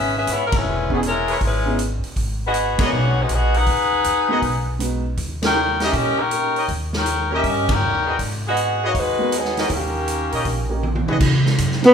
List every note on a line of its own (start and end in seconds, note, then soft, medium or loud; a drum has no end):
0.00 0.25 G#1 medium
0.00 0.16 C#4 medium
0.00 0.16 G#4 medium
0.00 0.16 B4 medium
0.00 0.16 E5 medium
0.17 0.28 C#4 medium
0.17 0.28 G#4 medium
0.17 0.28 B4 medium
0.17 0.28 E5 medium
0.27 0.62 G#2 medium
0.27 0.45 B3 medium
0.27 0.45 E4 medium
0.27 0.45 G#4 medium
0.27 0.45 C#5 loud
0.27 closed hi-hat medium
0.46 0.54 A#4 medium
0.52 0.92 G#3 medium
0.52 0.91 C#4 medium
0.52 0.92 E4 medium
0.52 0.92 B4 medium
0.52 kick medium
0.52 ride medium
0.65 1.37 E1 medium
0.89 0.98 E3 medium
0.89 1.01 B3 medium
0.89 0.98 B3 medium
0.89 1.02 C#4 medium
0.89 0.98 C#4 medium
0.89 1.02 D#4 medium
0.89 1.02 E4 medium
0.89 1.02 G#4 medium
0.89 0.98 G#4 medium
0.89 kick soft
1.03 1.39 G#3 medium
1.03 1.39 C#4 medium
1.03 1.40 E4 medium
1.03 1.39 A#4 medium
1.03 closed hi-hat soft
1.28 1.37 E4 medium
1.28 1.37 G#4 medium
1.28 1.37 B4 medium
1.28 1.37 C#5 medium
1.28 open hi-hat soft
1.41 2.00 G#1 medium
1.41 1.80 G#3 medium
1.41 1.80 C#4 medium
1.41 1.80 E4 medium
1.41 1.80 B4 medium
1.41 kick soft
1.41 open hi-hat soft
1.66 1.77 B3 medium
1.66 1.77 C#4 medium
1.66 1.78 D#4 medium
1.66 1.78 E4 medium
1.66 1.78 G#4 medium
1.79 closed hi-hat medium
2.04 muted upright bass stroke soft
2.04 open hi-hat soft
2.16 2.75 G#1 medium
2.16 kick soft
2.16 open hi-hat soft
2.45 2.78 B3 medium
2.45 2.78 F#4 medium
2.45 2.79 G#4 medium
2.45 2.78 D#5 medium
2.54 closed hi-hat medium
2.78 2.90 G#3 medium
2.78 2.90 B3 medium
2.78 2.90 D#4 medium
2.78 2.87 F#4 medium
2.78 2.91 F#4 medium
2.78 2.87 G#4 medium
2.78 2.91 A#4 medium
2.78 2.87 B4 medium
2.78 2.87 D#5 loud
2.78 muted upright bass stroke soft
2.78 kick medium
2.78 ride medium
2.83 3.18 B3 medium
2.83 3.18 F#4 medium
2.83 3.18 G#4 medium
2.83 3.19 C#5 medium
2.92 3.27 B1 medium
3.20 3.31 G#3 medium
3.20 3.31 D#4 medium
3.20 3.31 F#4 medium
3.20 3.31 B4 medium
3.29 3.64 A#1 medium
3.29 3.56 B3 medium
3.29 3.56 F#4 medium
3.29 3.55 G#4 medium
3.29 3.55 D#5 loud
3.29 closed hi-hat soft
3.54 4.81 D#4 medium
3.54 4.81 G#4 loud
3.54 4.81 B4 medium
3.54 4.81 F#5 loud
3.54 open hi-hat soft
3.66 4.02 D#2 medium
3.66 kick soft
3.66 open hi-hat soft
4.04 4.40 D#2 medium
4.04 closed hi-hat soft
4.29 4.40 G#3 medium
4.29 4.41 B3 medium
4.29 4.41 D#4 medium
4.29 4.38 F#4 medium
4.29 4.41 F#4 medium
4.29 4.38 G#4 medium
4.29 4.42 A#4 medium
4.29 4.38 B4 medium
4.29 4.38 D#5 medium
4.42 5.14 B1 medium
4.42 kick soft
4.42 open hi-hat soft
4.79 5.02 G#3 medium
4.79 5.02 B3 soft
4.79 5.02 D#4 soft
4.79 5.03 F#4 soft
4.79 5.03 B4 medium
4.79 closed hi-hat medium
5.17 5.89 D#2 medium
5.17 kick soft
5.17 open hi-hat soft
5.42 5.54 A#3 medium
5.42 5.54 C#4 medium
5.42 5.54 D#4 medium
5.42 5.79 D#4 medium
5.42 5.54 G4 medium
5.42 5.55 A#4 medium
5.42 5.78 A#4 medium
5.42 5.78 C#5 medium
5.42 5.78 G5 medium
5.42 snare medium
5.42 ride medium
5.80 5.94 C#4 medium
5.80 5.89 G4 medium
5.80 5.94 G4 medium
5.80 5.89 A#4 medium
5.80 5.94 A#4 medium
5.80 5.89 C#5 medium
5.80 5.89 D#5 loud
5.80 5.94 E5 medium
5.80 snare soft
5.80 open hi-hat soft
5.93 6.65 A#2 medium
5.93 6.19 C#4 medium
5.93 6.19 G4 medium
5.93 6.18 A#4 medium
5.93 6.19 D#5 medium
5.93 kick soft
5.93 open hi-hat soft
6.20 6.69 D#4 medium
6.20 6.69 A#4 medium
6.20 6.69 C#5 medium
6.20 6.69 G5 loud
6.31 6.53 A#3 soft
6.31 6.53 C#4 soft
6.31 6.54 D#4 soft
6.31 6.54 G4 soft
6.31 6.54 A#4 soft
6.31 closed hi-hat medium
6.56 6.64 G4 medium
6.56 6.64 A#4 medium
6.56 6.64 C#5 medium
6.56 6.64 D#5 medium
6.56 open hi-hat soft
6.68 7.40 D#2 medium
6.68 kick soft
6.68 open hi-hat soft
6.93 7.30 D#4 medium
6.93 7.30 A#4 medium
6.93 7.30 C#5 medium
6.93 7.30 G5 medium
6.93 snare medium
7.06 closed hi-hat soft
7.31 7.42 A#3 medium
7.31 7.43 C#4 medium
7.31 7.45 C#4 medium
7.31 7.43 D#4 medium
7.31 7.40 G4 medium
7.31 7.43 G4 medium
7.31 7.45 G4 medium
7.31 7.40 A#4 medium
7.31 7.43 A#4 medium
7.31 7.45 A#4 medium
7.31 7.40 C#5 medium
7.31 7.40 D#5 medium
7.31 7.45 E5 medium
7.44 7.79 G2 medium
7.44 7.70 C#4 medium
7.44 7.70 G4 medium
7.44 7.70 A#4 medium
7.44 7.70 D#5 medium
7.44 kick soft
7.44 open hi-hat soft
7.69 8.21 D#4 medium
7.69 8.21 A#4 medium
7.69 8.20 C#5 medium
7.69 8.21 G5 loud
7.69 kick medium
7.69 ride medium
7.81 8.16 D#2 medium
8.05 8.14 F#4 medium
8.05 8.14 G#4 medium
8.05 8.14 B4 medium
8.05 8.15 D#5 medium
8.19 8.91 G#2 medium
8.19 kick soft
8.19 open hi-hat soft
8.47 8.81 B3 medium
8.47 8.81 F#4 medium
8.47 8.81 G#4 medium
8.47 8.81 D#5 medium
8.57 closed hi-hat soft
8.82 8.96 A#3 medium
8.82 8.96 D#4 medium
8.82 8.90 F#4 medium
8.82 8.96 F#4 medium
8.82 8.90 G#4 medium
8.82 8.90 B4 medium
8.82 8.96 C#5 medium
8.82 8.91 D#5 loud
8.95 9.66 D#2 medium
8.95 9.34 G#3 medium
8.95 9.34 D#4 medium
8.95 9.34 B4 medium
8.95 kick soft
8.95 open hi-hat soft
8.99 9.34 F#4 medium
9.19 9.31 G#3 medium
9.19 9.31 B3 medium
9.19 9.31 D#4 soft
9.19 9.31 F#4 medium
9.19 9.32 A#4 medium
9.32 9.72 F#3 medium
9.32 9.72 B3 medium
9.32 9.71 D#4 medium
9.32 9.71 G#4 medium
9.32 closed hi-hat medium
9.45 snare soft
9.57 9.66 G4 medium
9.57 9.66 A#4 medium
9.57 9.66 C#5 medium
9.57 9.66 D#5 medium
9.57 snare soft
9.57 open hi-hat soft
9.70 10.29 D#2 medium
9.70 10.81 D#3 medium
9.70 10.81 A#3 medium
9.70 10.81 C#4 medium
9.70 10.80 G4 medium
9.70 kick soft
9.70 open hi-hat soft
10.08 closed hi-hat soft
10.32 10.44 A#2 medium
10.32 10.41 G4 medium
10.32 10.41 A#4 medium
10.32 10.41 C#5 medium
10.32 10.41 D#5 medium
10.32 open hi-hat soft
10.45 11.04 A#1 medium
10.45 kick soft
10.45 open hi-hat soft
10.69 10.81 A#3 medium
10.69 10.81 C#4 medium
10.69 10.82 D#4 medium
10.69 10.82 G4 medium
10.69 10.82 A#4 medium
10.83 high tom soft
10.95 high tom medium
11.07 11.20 A#1 medium
11.07 11.16 F#4 medium
11.07 11.16 G#4 medium
11.07 11.16 B4 medium
11.07 11.16 D#5 medium
11.07 mid tom medium
11.20 11.57 D#2 medium
11.20 kick medium
11.20 crash medium
11.46 snare soft
11.58 11.94 F#2 medium
11.58 kick soft
11.58 hi-hat pedal medium
11.58 ride medium
11.72 snare soft
11.82 11.94 G#3 medium
11.82 11.94 B3 medium
11.82 11.94 D#4 medium
11.82 11.94 F#4 medium
11.82 11.94 A#4 medium
11.82 snare soft
11.82 ride soft